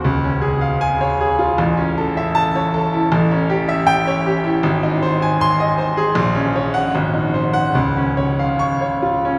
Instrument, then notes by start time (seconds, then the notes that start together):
grand piano
0.04 C#2
0.24 C#4
0.41 G#4
0.61 F5
0.81 G#5
1.01 C#5
1.21 G#4
1.39 F4
1.58 A1
1.77 C#4
1.98 A4
2.17 E5
2.35 A5
2.55 C#5
2.74 A4
2.94 E4
3.12 A1
3.31 C#4
3.50 G4
3.69 E5
3.87 G5
4.07 C#5
4.26 G4
4.44 E4
4.63 G#1
4.83 D#4
5.03 C5
5.22 G#5
5.41 C6
5.60 D#5
5.78 C5
5.97 G#4
6.15 A#1
6.35 C#4
6.56 C#5
6.74 F#5
6.95 G#1
7.14 D#4
7.34 C5
7.53 F#5
7.75 C#2
7.97 C#4
8.17 C#5
8.39 F5
8.59 C#6
8.81 C#5
9.03 F4
9.25 C#4